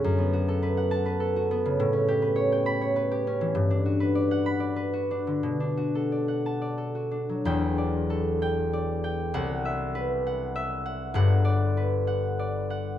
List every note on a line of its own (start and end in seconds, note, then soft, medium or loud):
0.00 1.92 C#4 medium
0.00 0.32 F#4 medium
0.00 1.80 G#4 medium
0.00 2.35 C#5 medium
0.00 0.76 F#5 medium
0.00 1.80 G#5 medium
0.04 1.79 F#2 medium
0.18 1.50 B3 medium
0.33 1.35 F#4 medium
0.48 1.19 A4 medium
0.62 1.04 B4 medium
0.77 1.80 F#5 medium
0.91 3.55 A5 medium
1.05 2.21 B4 medium
1.20 3.56 A4 medium
1.36 1.80 F#4 medium
1.51 5.41 B3 medium
1.66 1.81 C#3 medium
1.80 3.57 A2 medium
1.93 3.26 C#4 medium
2.08 3.10 G4 medium
2.22 2.95 B4 medium
2.36 2.80 C#5 medium
2.52 5.47 G5 medium
2.66 4.45 B5 medium
2.81 3.57 C#5 medium
2.96 3.99 B4 medium
3.11 5.47 G4 medium
3.27 3.57 C#4 medium
3.41 3.57 E3 medium
3.55 5.46 G2 medium
3.70 5.10 D4 medium
3.86 4.92 F#4 medium
4.00 4.75 B4 medium
4.15 4.59 D5 medium
4.31 6.27 F#5 medium
4.46 8.36 B5 medium
4.60 6.11 D5 medium
4.76 8.66 B4 medium
4.93 5.76 F#4 medium
5.11 5.59 D4 medium
5.27 5.46 D3 soft
5.43 7.49 B2 medium
5.60 7.10 D4 soft
5.77 6.94 F#4 soft
5.95 6.76 A4 soft
6.12 6.60 D5 medium
6.28 9.33 F#5 medium
6.46 9.37 A5 medium
6.62 7.77 D5 soft
6.78 8.09 A4 soft
6.95 10.85 F#4 soft
7.11 9.36 D4 soft
7.29 11.19 F#3 soft
7.45 9.36 E1 medium
7.45 9.37 E2 medium
7.45 8.41 G5 medium
7.78 8.72 D5 medium
8.10 9.36 A4 medium
8.42 9.03 G5 medium
8.73 9.37 D5 medium
9.04 12.94 G5 medium
9.34 11.17 C2 medium
9.34 10.25 F#5 loud
9.65 10.54 E5 medium
9.95 11.76 B4 medium
10.27 10.84 F#5 medium
10.56 11.17 E5 medium
10.86 11.14 F#5 medium
11.14 12.98 G1 medium
11.14 12.98 G2 medium
11.14 12.06 F#5 medium
11.45 12.38 D5 medium
11.77 12.98 B4 medium
12.07 12.69 F#5 medium
12.39 12.98 D5 medium
12.70 12.98 F#5 medium